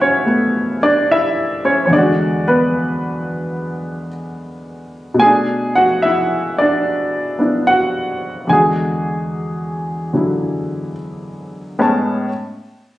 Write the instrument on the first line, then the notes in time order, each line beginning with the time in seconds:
grand piano
Already playing: B2 D3 A3 E4 F#4 G#4 E5 F#5 G#5
0.01 C#4 C#5
0.26 A3 B3
0.83 D4 D5
1.12 E4 E5
1.65 C#4 C#5
1.86 E2 C#5
1.91 D3 G#3 D4 D5
1.98 F#4
2.48 B3 B4
5.14 B2 A3
5.19 G#4 G#5
5.25 D4
5.75 F#4 F#5
6.02 E4 E5
6.58 D4 D5
7.39 B3 D4 E4
7.67 F#4 F#5
8.47 E2 D3 G#3 G#5
8.53 F#4 G#4
10.13 D3 F#3 E4
11.79 A2 G#3 B3 C#4 A5